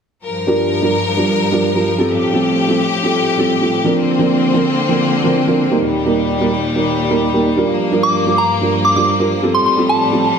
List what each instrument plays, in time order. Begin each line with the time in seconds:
0.24 string section G2 F3 A#4
0.47 felt piano G3 D4 F4 A#4
0.82 felt piano G3 D4 F4 A#4
1.17 felt piano G3 D4 F4 A#4
1.52 felt piano G3 D4 F4 A#4
1.75 felt piano G3 D4 F4 A#4
1.98 felt piano G3 C4 F4 A4
2.10 string section A2 G4
2.33 felt piano G3 C4 F4 A4
2.68 felt piano G3 C4 F4 A4
3.03 felt piano G3 C4 F4 A4
3.38 felt piano G3 C4 F4 A4
3.61 felt piano G3 C4 F4 A4
3.84 felt piano F3 C4 D4 A#4
3.96 string section D3 A#3 C4
4.19 felt piano F3 C4 D4 A#4
4.54 felt piano F3 C4 D4 A#4
4.89 felt piano F3 C4 D4 A#4
5.24 felt piano F3 C4 D4 A#4
5.47 felt piano F3 C4 D4 A#4
5.70 felt piano G3 A#3 D#4 A#4
5.82 string section D#2 A#2 G3
6.05 felt piano G3 A#3 D#4 A#4
6.40 felt piano G3 A#3 D#4 A#4
6.75 felt piano G3 A#3 D#4 A#4
7.10 felt piano G3 A#3 D#4 A#4
7.33 felt piano G3 A#3 D#4 A#4
7.56 felt piano G3 D4 F4 A#4
7.68 string section G2 F3 A#3
7.91 felt piano G3 D4 F4 A#4
8.03 synth bell D6
8.26 felt piano G3 D4 F4 A#4
8.38 synth bell A#5
8.61 felt piano G3 D4 F4 A#4
8.85 synth bell D6
8.96 felt piano G3 D4 F4 A#4, synth bell D6
9.19 felt piano G3 D4 F4 A#4
9.42 felt piano G3 C4 F4 A4
9.54 string section A2 G3, synth bell C6
9.66 synth bell C6
9.77 felt piano G3 C4 F4 A4
9.89 synth bell A5
10.12 felt piano G3 C4 F4 A4